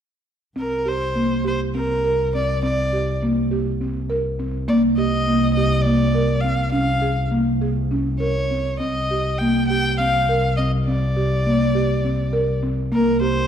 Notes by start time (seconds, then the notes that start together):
0.56 C2 C4 A#4
0.86 G4 C5
1.15 A#3
1.45 G4 C5
1.75 C4 A#4
2.04 A#4
2.34 C4 D5
2.63 C4 D5
2.93 G4
3.23 A#3
3.51 G4
3.81 C4
4.10 A#4
4.39 C4
4.68 C2 A#3 D5
4.97 G4 D#5
5.28 A#3
5.54 G4 D#5
5.82 D5
5.86 A#3
6.15 A#4
6.41 C4 F5
6.71 C2 C#4 F5
7.02 G#4
7.31 A#3
7.61 G#4
7.91 C#4
8.20 A#4 C#5
8.51 C4
8.79 C2 C4 D#5
9.11 G4
9.38 A#3 G5
9.67 G4 G5
9.98 C4 F5
10.29 A#4
10.57 C4 D#5
10.85 C4 D5
11.16 G4
11.46 A#3
11.75 G4
12.05 C4
12.33 A#4
12.63 C4
12.92 C2 A#3 A#4
13.21 G4 C5